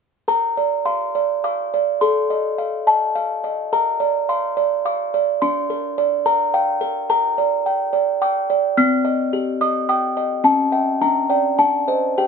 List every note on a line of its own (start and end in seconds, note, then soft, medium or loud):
0.28 1.96 A#4 medium
0.28 0.84 A#5 medium
0.57 1.04 D5 soft
0.85 1.32 F5 soft
0.85 1.41 C6 medium
1.15 1.61 D5 soft
1.44 1.89 F5 soft
1.44 1.99 D6 medium
1.74 2.02 D5 soft
2.01 3.69 A4 medium
2.01 2.84 C6 medium
2.30 2.76 D#5 soft
2.58 3.04 F5 soft
2.87 3.33 D#5 soft
2.87 3.14 A5 medium
3.15 3.70 F5 medium
3.44 3.72 D#5 soft
3.73 5.38 A#4 medium
3.73 4.27 A#5 medium
4.00 4.45 D5 soft
4.29 4.74 F5 soft
4.29 4.83 C6 medium
4.57 5.02 D5 soft
4.86 5.30 F5 soft
4.86 5.40 D6 medium
5.14 5.42 D5 soft
5.42 7.06 D4 medium
5.42 6.22 C6 medium
5.70 6.15 A#4 soft
5.98 6.42 D5 soft
6.26 6.70 A#4 soft
6.26 6.52 A#5 medium
6.54 6.98 F5 soft
6.54 7.08 G5 medium
6.81 7.08 A#4 soft
7.10 8.74 A#4 medium
7.10 8.17 A#5 medium
7.38 7.82 D5 soft
7.66 8.10 G5 soft
7.93 8.38 D5 soft
8.22 8.66 G5 soft
8.22 8.76 D6 medium
8.50 8.78 D5 medium
8.77 10.41 C4 medium
8.77 9.58 F6 loud
9.05 9.49 D#5 soft
9.33 9.78 G4 soft
9.61 10.06 D#5 medium
9.61 9.88 D#6 medium
9.89 10.34 G5 soft
9.89 10.42 D#6 medium
10.17 10.45 D#5 medium
10.44 10.99 C#4 medium
10.44 10.99 A5 medium
10.72 10.98 E5 soft
10.72 10.98 G5 medium
11.01 11.57 D4 medium
11.01 11.57 A#5 medium
11.30 11.56 D5 soft
11.30 11.56 G5 soft
11.59 12.16 D4 medium
11.59 12.15 A5 medium
11.88 12.15 C5 soft
11.88 12.15 D#5 soft
12.18 12.27 G4 medium
12.18 12.27 G5 medium